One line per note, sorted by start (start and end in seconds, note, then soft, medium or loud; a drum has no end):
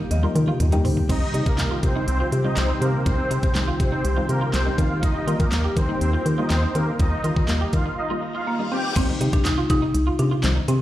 0.00 1.05 D#3 medium
0.00 1.05 G3 medium
0.00 1.05 A#3 medium
0.00 1.05 G4 medium
0.00 0.12 F5 loud
0.11 0.27 D#2 loud
0.11 0.81 D#5 medium
0.11 closed hi-hat medium
0.11 high tom medium
0.23 0.55 G3 medium
0.23 0.55 A#3 medium
0.23 0.55 D#4 medium
0.23 0.32 F4 medium
0.23 0.55 A#4 medium
0.23 high tom medium
0.35 0.51 D#3 loud
0.35 muted clean electric guitar stroke soft
0.35 closed hi-hat medium
0.35 mid tom medium
0.48 0.57 F4 medium
0.48 mid tom medium
0.60 0.86 D#2 loud
0.60 muted clean electric guitar stroke soft
0.60 closed hi-hat loud
0.60 mid tom medium
0.72 1.04 G3 loud
0.72 1.04 A#3 medium
0.72 0.81 D#4 medium
0.72 1.04 D#4 loud
0.72 1.04 G4 loud
0.72 closed hi-hat medium
0.85 1.01 D#3 loud
0.85 0.94 C4 medium
0.85 floor tom loud
0.85 open hi-hat medium
0.97 floor tom loud
1.09 1.25 C2 loud
1.09 8.92 D#3 medium
1.09 8.92 G3 medium
1.09 1.18 C4 medium
1.09 4.75 C4 medium
1.09 1.27 D#4 medium
1.09 6.71 G4 medium
1.09 1.27 D#5 loud
1.09 kick loud
1.09 closed hi-hat medium
1.09 crash medium
1.22 muted clean electric guitar stroke soft
1.34 1.42 C3 loud
1.34 1.73 G3 medium
1.34 1.73 C4 medium
1.34 1.43 D#4 medium
1.34 1.73 D#4 medium
1.34 closed hi-hat medium
1.46 1.60 C3 loud
1.46 1.56 A#3 medium
1.46 1.55 A#4 medium
1.46 kick loud
1.46 closed hi-hat soft
1.58 1.74 C2 loud
1.58 snare medium
1.58 clap loud
1.58 closed hi-hat medium
1.71 1.80 F4 medium
1.83 1.99 C3 loud
1.83 2.01 C4 medium
1.83 2.01 C5 medium
1.83 muted clean electric guitar stroke soft
1.83 kick medium
1.83 closed hi-hat medium
1.95 2.27 G3 medium
1.95 2.27 C4 medium
1.95 2.04 D#4 medium
1.95 2.27 D#4 medium
2.08 2.24 C2 loud
2.08 2.17 C4 medium
2.08 2.16 C5 medium
2.08 closed hi-hat medium
2.20 2.29 F4 medium
2.32 2.48 C3 loud
2.32 muted clean electric guitar stroke soft
2.32 closed hi-hat medium
2.44 2.84 G3 medium
2.44 2.84 C4 medium
2.44 2.84 D#4 medium
2.44 2.54 D#4 medium
2.44 2.53 F4 medium
2.44 2.54 D#5 medium
2.57 2.73 C2 loud
2.57 2.66 C4 medium
2.57 2.66 C5 medium
2.57 muted clean electric guitar stroke soft
2.57 snare medium
2.57 clap loud
2.57 closed hi-hat medium
2.69 2.78 D#4 medium
2.81 2.97 C3 loud
2.81 2.91 A#3 medium
2.81 2.90 C4 medium
2.81 2.90 A#4 medium
2.81 closed hi-hat medium
3.06 3.22 C2 loud
3.06 3.37 G3 medium
3.06 3.15 C4 medium
3.06 3.38 C4 medium
3.06 3.24 C4 medium
3.06 3.38 D#4 medium
3.06 3.24 C5 loud
3.06 kick loud
3.06 closed hi-hat medium
3.18 muted clean electric guitar stroke soft
3.31 3.39 C3 medium
3.31 3.40 D#4 medium
3.31 closed hi-hat medium
3.43 3.51 C3 medium
3.43 3.52 C4 medium
3.43 3.52 C5 medium
3.43 kick loud
3.43 closed hi-hat medium
3.55 3.71 C2 loud
3.55 3.94 G3 medium
3.55 3.94 C4 medium
3.55 3.95 D#4 medium
3.55 snare medium
3.55 clap loud
3.55 closed hi-hat medium
3.68 3.76 F4 medium
3.80 3.96 C3 loud
3.80 4.15 C4 medium
3.80 4.15 C5 medium
3.80 muted clean electric guitar stroke soft
3.80 kick medium
3.80 closed hi-hat medium
3.92 4.01 D#4 medium
4.05 4.20 C2 loud
4.05 closed hi-hat medium
4.17 4.48 G3 medium
4.17 4.48 C4 medium
4.17 4.48 D#4 medium
4.17 4.26 F4 medium
4.29 4.45 C3 loud
4.29 4.38 A#3 medium
4.29 4.38 A#4 medium
4.29 muted clean electric guitar stroke soft
4.29 closed hi-hat medium
4.41 4.50 F4 medium
4.53 4.70 C2 loud
4.53 4.63 C4 medium
4.53 4.63 C5 medium
4.53 muted clean electric guitar stroke soft
4.53 snare medium
4.53 clap loud
4.53 closed hi-hat medium
4.66 4.77 G3 medium
4.66 4.78 C4 medium
4.66 4.75 D#4 medium
4.66 4.78 D#4 medium
4.78 5.10 D#3 loud
4.78 5.18 G3 medium
4.78 8.92 A#3 medium
4.78 5.18 A#3 medium
4.78 4.87 C4 medium
4.78 5.18 D#4 medium
4.78 4.88 F4 medium
4.78 4.87 F5 medium
4.78 kick loud
4.78 closed hi-hat medium
5.03 5.12 D#4 medium
5.03 5.21 D#4 medium
5.03 5.20 D#5 loud
5.03 kick loud
5.03 closed hi-hat medium
5.15 muted clean electric guitar stroke soft
5.27 5.35 D#3 loud
5.27 5.66 G3 medium
5.27 5.67 A#3 medium
5.27 5.67 D#4 medium
5.27 5.36 F4 medium
5.27 closed hi-hat medium
5.40 5.48 D#3 loud
5.40 5.49 A#3 medium
5.40 5.49 A#4 medium
5.40 kick loud
5.40 closed hi-hat soft
5.52 5.68 D#2 loud
5.52 snare medium
5.52 clap loud
5.52 closed hi-hat medium
5.64 5.73 G4 medium
5.77 5.93 D#3 loud
5.77 5.95 C4 medium
5.77 5.94 C5 medium
5.77 muted clean electric guitar stroke soft
5.77 kick medium
5.77 closed hi-hat medium
5.89 6.20 G3 medium
5.89 6.20 A#3 medium
5.89 5.98 D#4 medium
5.89 6.20 D#4 medium
6.01 6.17 D#2 loud
6.01 6.11 C4 medium
6.01 6.10 C5 medium
6.01 closed hi-hat medium
6.13 6.22 F4 medium
6.26 6.42 D#3 loud
6.26 muted clean electric guitar stroke soft
6.26 closed hi-hat medium
6.38 6.77 G3 medium
6.38 6.77 A#3 medium
6.38 6.77 D#4 medium
6.38 6.47 D#4 medium
6.38 6.47 F4 medium
6.38 6.47 D#5 medium
6.50 6.66 D#2 loud
6.50 6.60 C4 medium
6.50 6.59 C5 medium
6.50 muted clean electric guitar stroke soft
6.50 snare medium
6.50 clap loud
6.50 closed hi-hat medium
6.63 6.72 D#4 medium
6.75 6.91 D#3 loud
6.75 6.84 A#3 medium
6.75 6.84 C4 medium
6.75 8.94 F4 medium
6.75 6.84 A#4 medium
6.75 closed hi-hat medium
6.99 7.16 D#2 loud
6.99 7.31 G3 medium
6.99 7.31 A#3 medium
6.99 7.08 D#4 medium
6.99 7.18 D#4 medium
6.99 7.31 F4 medium
6.99 7.17 D#5 loud
6.99 kick loud
6.99 closed hi-hat medium
7.12 muted clean electric guitar stroke soft
7.24 7.32 D#3 loud
7.24 7.33 F4 medium
7.24 closed hi-hat medium
7.36 7.44 D#3 loud
7.36 7.46 D#4 medium
7.36 7.45 D#5 medium
7.36 kick loud
7.48 7.65 D#2 loud
7.48 7.88 G3 medium
7.48 7.88 A#3 medium
7.48 7.88 F4 medium
7.48 snare medium
7.48 clap loud
7.48 closed hi-hat medium
7.61 7.70 G4 medium
7.73 7.89 D#3 loud
7.73 7.91 F4 medium
7.73 7.91 F5 medium
7.73 muted clean electric guitar stroke soft
7.73 kick medium
7.73 closed hi-hat medium
7.86 7.95 D#4 medium
7.98 8.07 D#4 medium
7.98 8.07 D#5 medium
7.98 reverse cymbal medium
8.10 8.41 G3 medium
8.10 8.42 A#3 medium
8.10 8.19 F4 medium
8.10 8.42 F4 medium
8.22 muted clean electric guitar stroke soft
8.35 8.44 F4 medium
8.35 8.44 F5 medium
8.47 8.72 A#3 medium
8.47 muted clean electric guitar stroke soft
8.59 8.96 G3 medium
8.59 8.96 A#3 medium
8.59 8.68 D#4 medium
8.59 8.96 D#4 medium
8.71 8.80 C4 medium
8.71 8.83 C4 medium
8.71 8.81 G4 medium
8.71 8.80 G5 medium
8.96 9.12 C2 loud
8.96 9.05 C4 medium
8.96 9.34 C4 loud
8.96 kick loud
8.96 closed hi-hat medium
8.96 crash loud
9.08 9.71 D#3 medium
9.08 9.71 G3 medium
9.08 9.71 C4 medium
9.08 9.71 D#4 medium
9.08 muted clean electric guitar stroke soft
9.21 9.29 C3 loud
9.21 9.30 D#4 medium
9.21 closed hi-hat medium
9.33 9.47 C3 loud
9.33 9.46 D4 loud
9.33 kick loud
9.33 closed hi-hat medium
9.45 9.61 C2 loud
9.45 9.56 D#4 loud
9.45 snare medium
9.45 clap loud
9.45 closed hi-hat loud
9.58 9.67 F4 medium
9.70 9.86 C3 loud
9.70 10.21 D#4 loud
9.70 muted clean electric guitar stroke soft
9.70 kick medium
9.70 closed hi-hat medium
9.82 9.91 D#4 medium
9.95 10.11 C2 loud
9.95 closed hi-hat medium
10.07 10.16 F4 medium
10.19 10.35 C3 loud
10.19 10.70 D4 loud
10.19 muted clean electric guitar stroke soft
10.19 closed hi-hat medium
10.31 10.40 F4 medium
10.43 10.60 C2 loud
10.43 10.75 D#3 medium
10.43 10.75 G3 medium
10.43 10.75 C4 medium
10.43 10.75 D#4 loud
10.43 muted clean electric guitar stroke soft
10.43 snare medium
10.43 clap loud
10.43 closed hi-hat medium
10.56 10.65 D#4 medium
10.68 10.82 C3 loud
10.68 10.77 C4 medium
10.68 10.82 C4 loud
10.68 closed hi-hat medium